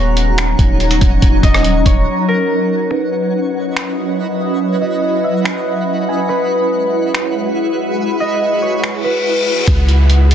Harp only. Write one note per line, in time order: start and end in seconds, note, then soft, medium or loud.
0.00 1.45 C#5 loud
0.00 0.20 E5 medium
0.00 0.29 F#5 loud
0.00 0.82 G#5 medium
1.44 3.22 D#5 medium
1.86 3.77 C#5 medium
2.28 2.97 A#4 medium
2.91 4.96 B4 loud
4.81 5.30 D#5 medium
5.24 6.96 E5 medium
5.44 7.05 F#5 medium
6.09 7.59 G#5 medium
6.29 8.34 B4 loud
8.20 9.99 D#5 medium
8.62 10.35 C#5 medium
9.04 10.35 B4 medium